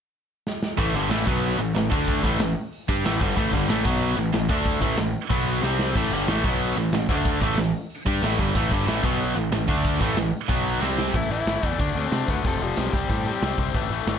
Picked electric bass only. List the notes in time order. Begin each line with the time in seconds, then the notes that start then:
0.79 A1
0.94 G1
1.10 A1
1.27 B1
1.59 A1
1.75 A1
1.92 D2
2.24 A1
2.40 A1
2.89 G2
3.05 A1
3.21 G1
3.37 A1
3.53 G1
3.69 A1
3.85 B1
4.17 A1
4.34 A1
4.50 D2
4.82 A1
4.98 A1
5.30 B1
5.63 C2
5.95 A1
6.12 G1
6.28 A1
6.45 B1
6.76 A1
6.92 A1
7.09 D2
7.41 A1
7.58 A1
8.07 G2
8.21 A1
8.39 G1
8.55 A1
8.72 G1
8.87 A1
9.04 B1
9.36 A1
9.52 A1
9.68 D2
10.01 A1
10.17 A1
10.49 B1
10.81 C2
11.14 A1
11.30 A1
11.46 G1
11.63 E2
11.80 D2
11.95 D2
12.12 C3
12.28 D2
12.45 F1
12.61 F1
12.77 B1
12.93 C2
13.10 A2
13.42 C2
13.58 C2
13.75 A1
13.90 A1
14.07 G1